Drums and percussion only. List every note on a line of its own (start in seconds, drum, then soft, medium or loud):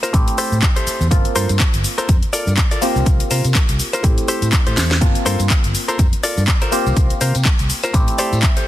0.03 closed hi-hat soft
0.03 tambourine medium
0.03 shaker soft
0.14 kick loud
0.14 closed hi-hat medium
0.14 shaker soft
0.27 closed hi-hat soft
0.27 tambourine soft
0.38 open hi-hat medium
0.38 shaker medium
0.52 tambourine medium
0.52 shaker soft
0.62 kick loud
0.62 clap loud
0.62 closed hi-hat medium
0.62 shaker soft
0.76 closed hi-hat soft
0.76 tambourine soft
0.76 shaker soft
0.87 open hi-hat medium
0.87 shaker medium
1.01 tambourine medium
1.01 shaker soft
1.11 kick loud
1.11 closed hi-hat medium
1.11 shaker soft
1.25 closed hi-hat medium
1.25 tambourine soft
1.36 open hi-hat medium
1.36 shaker medium
1.49 closed hi-hat soft
1.49 tambourine medium
1.49 shaker soft
1.60 kick loud
1.60 clap loud
1.60 closed hi-hat medium
1.60 shaker soft
1.74 closed hi-hat medium
1.74 tambourine soft
1.74 shaker soft
1.84 open hi-hat medium
1.84 shaker medium
1.98 closed hi-hat soft
1.98 tambourine medium
1.98 shaker soft
2.09 kick loud
2.09 closed hi-hat medium
2.09 tambourine medium
2.09 shaker soft
2.22 closed hi-hat soft
2.22 tambourine soft
2.33 open hi-hat medium
2.33 shaker medium
2.47 tambourine medium
2.47 shaker soft
2.57 kick medium
2.57 clap loud
2.57 closed hi-hat medium
2.57 shaker soft
2.71 closed hi-hat medium
2.71 tambourine soft
2.71 shaker soft
2.82 open hi-hat medium
2.82 shaker medium
2.95 tambourine medium
2.95 shaker soft
3.06 kick loud
3.06 closed hi-hat medium
3.06 tambourine medium
3.06 shaker soft
3.20 closed hi-hat medium
3.20 tambourine soft
3.31 open hi-hat loud
3.31 shaker medium
3.45 closed hi-hat soft
3.45 tambourine medium
3.45 shaker soft
3.55 kick loud
3.55 clap loud
3.55 closed hi-hat medium
3.55 shaker soft
3.69 closed hi-hat medium
3.69 tambourine soft
3.69 shaker soft
3.79 open hi-hat medium
3.79 shaker medium
3.93 closed hi-hat soft
3.93 tambourine medium
3.93 shaker soft
4.04 kick loud
4.04 closed hi-hat medium
4.04 tambourine medium
4.04 shaker soft
4.18 closed hi-hat medium
4.18 tambourine soft
4.18 shaker soft
4.28 open hi-hat medium
4.28 shaker medium
4.42 closed hi-hat soft
4.42 tambourine medium
4.42 shaker soft
4.53 kick loud
4.53 clap loud
4.53 closed hi-hat medium
4.53 shaker soft
4.67 closed hi-hat medium
4.67 tambourine soft
4.67 shaker soft
4.77 snare medium
4.77 open hi-hat medium
4.77 shaker medium
4.90 snare medium
4.90 closed hi-hat soft
4.90 tambourine medium
4.90 shaker soft
5.01 kick loud
5.01 closed hi-hat medium
5.01 tambourine medium
5.01 shaker soft
5.15 closed hi-hat medium
5.15 tambourine soft
5.26 open hi-hat loud
5.26 shaker medium
5.39 closed hi-hat soft
5.39 tambourine medium
5.39 shaker soft
5.50 kick loud
5.50 clap loud
5.50 closed hi-hat medium
5.50 shaker soft
5.64 closed hi-hat medium
5.64 tambourine soft
5.64 shaker soft
5.75 open hi-hat medium
5.75 shaker medium
5.89 closed hi-hat soft
5.89 tambourine medium
5.89 shaker soft
5.99 kick loud
5.99 closed hi-hat medium
5.99 tambourine medium
5.99 shaker soft
6.12 closed hi-hat soft
6.12 tambourine soft
6.24 open hi-hat loud
6.24 shaker medium
6.37 tambourine medium
6.37 shaker soft
6.48 kick loud
6.48 clap loud
6.48 closed hi-hat medium
6.48 shaker soft
6.62 closed hi-hat medium
6.62 tambourine soft
6.62 shaker soft
6.72 open hi-hat medium
6.72 shaker medium
6.86 tambourine medium
6.86 shaker soft
6.96 kick loud
6.96 closed hi-hat medium
6.96 tambourine medium
6.96 shaker soft
7.09 closed hi-hat medium
7.09 tambourine soft
7.21 open hi-hat loud
7.21 shaker medium
7.35 closed hi-hat soft
7.35 tambourine medium
7.35 shaker soft
7.45 kick loud
7.45 clap loud
7.45 closed hi-hat medium
7.45 shaker soft
7.59 closed hi-hat medium
7.59 tambourine soft
7.59 shaker soft
7.70 open hi-hat medium
7.70 shaker medium
7.83 closed hi-hat soft
7.83 tambourine medium
7.83 shaker soft
7.94 kick loud
7.94 closed hi-hat medium
7.94 tambourine medium
7.94 shaker soft
8.07 closed hi-hat medium
8.07 tambourine soft
8.18 open hi-hat loud
8.18 shaker medium
8.33 tambourine medium
8.33 shaker soft
8.43 kick loud
8.43 clap loud
8.43 closed hi-hat medium
8.43 shaker soft
8.57 closed hi-hat soft
8.57 tambourine soft
8.57 shaker soft